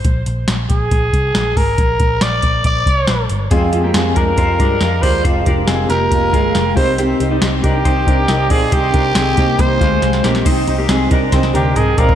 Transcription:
<<
  \new Staff \with { instrumentName = "Trumpet" } { \time 4/4 \key c \minor \tempo 4 = 138 r4. aes'2 bes'8~ | bes'4 d''4 d''4. r8 | r4. bes'2 c''8 | r4. bes'2 c''8 |
r4. g'2 aes'8 | g'2 c''4. r8 | r2 r8 g'8 aes'8 bes'8 | }
  \new Staff \with { instrumentName = "Clean electric guitar" } { \time 4/4 \key c \minor r1 | r1 | <c' aes'>8. <bes g'>16 <c' aes'>8 <d' bes'>8 <f' c''>8 <d' bes'>8 <f' bes'>8 <f' d''>8 | <f' c''>8 <d' bes'>8 <c' aes'>8 <bes g'>4 <aes f'>4 <c' g'>8 |
<c' g'>8. <g ees'>16 <c' g'>8 <d' bes'>8 <ees' c''>8 <d' bes'>8 <ees' bes'>8 <f' d''>8 | <ees' c''>8 <d' bes'>8 <c' aes'>8 <bes g'>4 <aes f'>4 <bes g'>8 | <ees' c''>8. <bes g'>16 <c' aes'>8 <d' bes'>8 <ees' c''>8 <d' bes'>8 <ees' bes'>8 <f' d''>8 | }
  \new Staff \with { instrumentName = "Steel-string acoustic guitar" } { \time 4/4 \key c \minor r1 | r1 | <f, c f aes f' g'>8 <f aes f' g'>8 <f aes f' g'>8 <f aes f' g'>8 <f, c f aes f' g'>8 <f aes f' g'>8 <f aes f' g'>8 <f aes f' g'>8 | <f, c f aes f' g'>8 <f aes f' g'>8 <f aes f' g'>8 <f aes f' g'>8 <f, c f aes f' g'>8 <f aes f' g'>8 <f aes f' g'>8 <c' ees' g'>8 |
<c ees c' ees' g'>8 <c' ees' g'>8 <ees c' ees' g'>8 <c' ees' g'>8 <c ees c' ees' g'>8 <c' ees' g'>8 <ees c' ees' g'>8 <c' ees' g'>8 | <c ees c' ees' g'>8 <c' ees' g'>8 <ees c' ees' g'>8 <c' ees' g'>8 <c ees c' ees' g'>8 <c' ees' g'>8 <ees c' ees' g'>8 <c' ees' g'>8 | <c ees c' ees' g'>8 <c' ees' g'>8 <ees c' ees' g'>8 <c' ees' g'>8 <c ees c' ees' g'>8 <c' ees' g'>8 <ees c' ees' g'>8 <c' ees' g'>8 | }
  \new Staff \with { instrumentName = "Picked electric bass" } { \clef bass \time 4/4 \key c \minor bes,,8 bes,,8 bes,,8 bes,,8 bes,,8 c,8 bes,,8 aes,,8 | bes,,8 bes,,8 bes,,8 bes,,8 bes,,8 c,8 bes,,8 g,,8 | f,8 f,8 f,8 f,8 f,8 g,8 f,8 ees,8 | f,,8 f,,8 f,,8 f,,8 f,,8 g,,8 f,,8 c,8~ |
c,8 c,8 c,8 c,8 c,8 c,8 c,8 bes,,8 | c,8 c,8 c,8 c,8 c,8 d,8 c,8 bes,,8 | c,8 c,8 c,8 c,8 c,8 d,8 c,8 bes,,8 | }
  \new DrumStaff \with { instrumentName = "Drums" } \drummode { \time 4/4 <hh bd>8 hh8 <hh sn>8 <hh bd>8 <hh bd>8 <hh bd>8 <hh sn>8 <hho bd>8 | <hh bd>8 <hh bd>8 <hh sn>8 <hh bd>8 <hh bd>8 <hh bd>8 <hh sn>8 hh8 | <hh bd>8 hh8 <hh sn>8 <hh bd>8 <hh bd>8 <hh bd>8 <hh sn>8 <hho bd>8 | <hh bd>8 <hh bd>8 <hh sn>8 hh8 <hh bd>8 <hh bd>8 <hh sn>8 <hho bd>8 |
hh8 hh8 <hh sn>8 <hh bd>8 <hh bd>8 <hh bd>8 <hh sn>8 <hho bd>8 | <hh bd>8 <hh bd>8 <hh sn>8 <hh bd>8 <hh bd>8 <hh bd>8 <hh sn>16 sn16 <hh sn>16 sn16 | <cymc hh bd>8 hh8 <hh sn>8 <hh bd>8 <hh bd sn>16 sn16 <hh tommh>16 tommh16 <hh toml>8 <hh tomfh>16 tomfh16 | }
>>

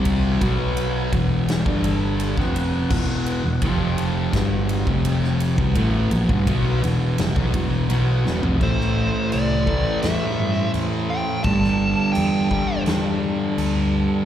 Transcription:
<<
  \new Staff \with { instrumentName = "Lead electric guitar" } { \time 4/4 \key e \minor \tempo 4 = 84 r1 | r1 | r1 | c''4 d''4 e''4 r8 g''8 |
a''4 g''4 r2 | }
  \new Staff \with { instrumentName = "Tonewheel organ" } { \time 4/4 \key e \minor <e fis'>8 b'4 e8. <g d' a'>4 <b fis''>8.~ | <b fis''>4 <f c' g'>4 <e b fis'>8. <f c' g'>4 <e b fis'>16~ | <e b fis'>1 | <a e' c''>1 |
<g d' a'>1 | }
  \new Staff \with { instrumentName = "Distorted electric guitar" } { \clef bass \time 4/4 \key e \minor <c g c'>8 <b, fis b>4 <e, b, e>8. <g, d g>4 <f, c f>8. | <e, b, e>8. <e, b,>16 <f, c f>4 <g, d g>8. <f, c f>4 <c g>16 | <a, e a>8 <ais, f>16 <g, d>16 <b, fis b>8 <e, b, e>8 <f, c>16 <b, fis>16 <e, b, e>8 <b, fis b>8 <e, b,>16 <f, c>16 | <a, e a>4. <a, e a>2~ <a, e a>8 |
<g, d g>4. <g, d g>2~ <g, d g>8 | }
  \new Staff \with { instrumentName = "Fingered electric bass" } { \clef bass \time 4/4 \key e \minor c,8 b,,4 e,,8. g,,4 f,,8. | e,,8. e,,16 f,,4 g,,8. f,,4 c,16 | a,,8 ais,,16 g,,16 b,,8 e,,8 f,,16 b,,16 e,,8 b,,8 e,,16 f,,16 | a,,4 c,4 e,8 g,8 e,4 |
g,,4 e,4 e,4 d,4 | }
  \new DrumStaff \with { instrumentName = "Drums" } \drummode { \time 4/4 <bd cymr>8 <bd cymr>8 cymr8 <bd cymr>8 <cymr sn>16 bd16 cymr8 cymr16 <bd sn>16 cymr8 | <cymc bd>8 cymr8 <bd cymr>8 cymr8 <bd cymr sn>8 cymr16 bd16 cymr16 sn16 cymr16 bd16 | <bd cymr>8 cymr16 bd16 <bd cymr>8 cymr8 <cymr sn>16 bd16 <bd cymr>8 cymr8 sn16 tomfh16 | <cymc bd>16 sn8. cymc8 bd8 <cymc sn>4 cymc4 |
<cymc bd>16 sn8. cymc8 bd8 <cymc sn>4 cymc4 | }
>>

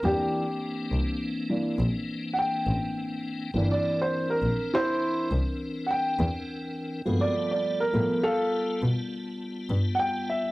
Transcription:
<<
  \new Staff \with { instrumentName = "Grand piano" } { \time 12/8 \key c \major \tempo 4. = 68 g'2 r2 <fis'' g''>2~ | <fis'' g''>16 d''8 c''8 bes'8. <e' c''>4 r4 <fis'' g''>2~ | <fis'' g''>16 d''8 d''8 bes'8. <a' f''>4 r2 <fis'' g''>8 e''8 | }
  \new Staff \with { instrumentName = "Grand piano" } { \time 12/8 \key c \major <e bes d'>8 r2 <e bes d'>8 r2. | <e bes d'>4. r1 r8 | <f a b>4. <f a b>8 r1 | }
  \new Staff \with { instrumentName = "Tonewheel organ" } { \time 12/8 \key c \major <e bes c' d'>1. | <e c' d' bes'>1. | <aes c' fis' bes'>8 <g b f' a''>1~ <g b f' a''>4. | }
  \new Staff \with { instrumentName = "Double bass" } { \clef bass \time 12/8 \key c \major e,4. c,4. bes,,4. a,,4. | g,,4. bes,,4. c,4. e,4. | g,4. a,4. b,4. g,4. | }
>>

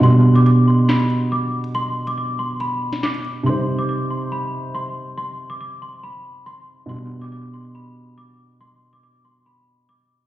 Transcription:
<<
  \new Staff \with { instrumentName = "Celesta" } { \time 4/4 \key g \phrygian \tempo 4 = 140 c'''8. d'''16 d'''8 c'''8 b''4 d'''4 | c'''8. d'''16 d'''8 c'''8 b''4 d'''4 | c'''8. d'''16 d'''8 c'''8 b''4 c'''4 | c'''8. d'''16 d'''8 c'''8 b''4 c'''4 |
c'''8. d'''16 d'''8 c'''8 b''4 d'''4 | c'''8. d'''16 d'''8 c'''8 b''4 d'''4 | }
  \new Staff \with { instrumentName = "Grand piano" } { \time 4/4 \key g \phrygian <b, g b d'>1~ | <b, g b d'>1 | <c g ees' c''>1~ | <c g ees' c''>1 |
<b, g b d'>1~ | <b, g b d'>1 | }
  \new DrumStaff \with { instrumentName = "Drums" } \drummode { \time 4/4 hh8. hh16 hh4 <hc hh sn>16 hh16 hh8 r8. hh16 | hh8. hh16 r4 hh8. <hh sn>16 <hc sn>16 hh16 hh8 | r4 r4 r4 r4 | r4 r4 r4 r4 |
r4 r4 r4 r4 | r4 r4 r4 r4 | }
>>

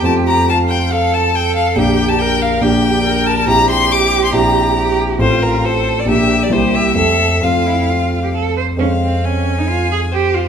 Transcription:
<<
  \new Staff \with { instrumentName = "Violin" } { \time 4/4 \key f \major \tempo 4 = 138 a''8 bes''8 a''8 g''8 f''8 a''8 g''8 f''8 | g''8. a''16 g''8 f''8 g''4. a''8 | bes''8 c'''8 d'''8. c'''16 bes''4. r8 | c''8 bes'8 c''8. d''16 e''8. d''16 c''8 e''8 |
e''4 f''2 r4 | \key f \minor f''4 aes''2 c''4 | }
  \new Staff \with { instrumentName = "Cello" } { \time 4/4 \key f \major g'4 f'4 a'4 a'4 | g'4 bes'4 g'4 bes'4 | g'2. g'4 | f'4 a'4 g'4 g'4 |
a'4 f'8 e'8 f'8. g'16 a'8 c''8 | \key f \minor des'8 c'8 des'8. ees'16 f'8 aes'8 g'8 f'16 r16 | }
  \new Staff \with { instrumentName = "Grand piano" } { \time 4/4 \key f \major <f, a c' f'>1 | <bes,, bes d' g'>2 <bes,, bes d' g'>2 | <bes,, c' e' g'>2 <bes,, c' e' g'>2 | <a,, c' f' a'>2 <bes,, bes d' g'>4 <c, bes e' g'>4 |
<f, a c' a'>4 <f, a c' a'>2. | \key f \minor <f, aes c' c''>1 | }
>>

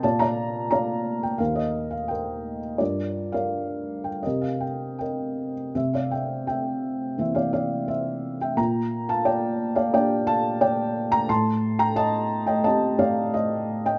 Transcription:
<<
  \new Staff \with { instrumentName = "Felt piano" } { \time 4/4 \key c \dorian \tempo 4 = 86 << { a''16 bes''8. bes''8. g''16 f''16 ees''8 f''16 g''8. r16 | d''8. f''4 g''16 ees''16 f''16 g''8 g''8. r16 | e''16 f''16 g''8 g''4 e''16 f''16 f''8 e''8. g''16 | bes''8. a''16 g''8. f''16 g''8 a''8 g''8. bes''16 |
c'''8. bes''16 a''8. g''16 a''8 f''8 ees''8. g''16 | } \\ { <d'' f''>16 <d'' f''>8. <d'' f''>4 <bes' c''>4 <bes' c''>4 | <f' bes'>8. <bes' d''>4~ <bes' d''>16 <g' bes'>4 <bes' ees''>4 | c''16 d''16 e''8 e''4 c''16 d''16 d''8 c''8. e''16 | g''8. f''16 d''8. d''16 d''8 f''8 d''8. g''16 |
a''8. g''16 ees''8. ees''16 ees''8 d''8 c''8. ees''16 | } >> }
  \new Staff \with { instrumentName = "Felt piano" } { \clef bass \time 4/4 \key c \dorian bes,2 ees,2 | g,2 c2 | c2 <e bes c'>2 | bes,2 <bes d' g'>2 |
a,2 <a c' g'>2 | }
>>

